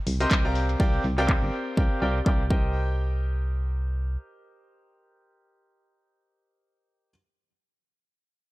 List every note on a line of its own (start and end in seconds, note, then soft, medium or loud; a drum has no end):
0.07 0.26 C2 medium
0.07 open hi-hat loud
0.20 0.29 C4 medium
0.20 0.29 G4 medium
0.20 0.29 A#4 medium
0.20 0.29 C5 medium
0.20 0.29 D#5 medium
0.20 0.29 C6 medium
0.20 closed hi-hat medium
0.31 0.76 C2 loud
0.31 0.43 C4 medium
0.31 0.43 G4 medium
0.31 0.43 A#4 medium
0.31 0.43 C5 medium
0.31 0.43 D#5 medium
0.31 0.43 G5 medium
0.31 kick loud
0.31 clap loud
0.31 closed hi-hat medium
0.45 0.77 C4 medium
0.45 0.77 G4 medium
0.45 0.77 A#4 medium
0.45 0.77 D5 medium
0.45 0.77 F5 medium
0.45 0.77 A#5 medium
0.55 open hi-hat loud
0.69 closed hi-hat medium
0.80 0.99 C2 loud
0.80 1.02 C4 medium
0.80 1.02 G4 medium
0.80 1.02 A#4 medium
0.80 1.02 D5 medium
0.80 1.02 F5 medium
0.80 1.02 G5 medium
0.80 kick loud
0.80 closed hi-hat medium
0.94 closed hi-hat soft
1.04 1.37 C2 medium
1.04 open hi-hat loud
1.18 1.75 C4 medium
1.18 1.75 G4 medium
1.18 1.75 A#4 medium
1.18 1.75 D5 medium
1.18 1.75 F5 medium
1.18 1.75 G5 loud
1.18 clap soft
1.18 closed hi-hat soft
1.29 kick loud
1.29 clap loud
1.29 closed hi-hat medium
1.42 1.50 G1 medium
1.42 closed hi-hat soft
1.53 open hi-hat loud
1.67 closed hi-hat soft
1.77 1.88 C2 medium
1.77 1.99 C4 medium
1.77 1.99 G4 medium
1.77 1.99 A#4 medium
1.77 1.99 D5 medium
1.77 1.99 F5 medium
1.77 1.99 G5 medium
1.77 kick loud
2.02 2.21 C2 medium
2.02 2.17 C4 medium
2.02 2.17 G4 medium
2.02 2.17 A#4 medium
2.02 2.17 D5 medium
2.02 2.17 F5 medium
2.02 2.17 G5 medium
2.02 clap soft
2.02 open hi-hat loud
2.26 2.50 C2 loud
2.26 2.41 C4 medium
2.26 2.41 G4 medium
2.26 2.41 A#4 medium
2.26 2.41 D5 medium
2.26 2.41 F5 medium
2.26 2.41 G5 medium
2.26 kick loud
2.26 clap loud
2.50 4.17 C2 medium
2.50 7.09 G4 medium
2.50 7.09 A#4 medium
2.50 7.09 C5 medium
2.50 7.09 D#5 medium
2.50 7.09 G5 medium
2.50 kick loud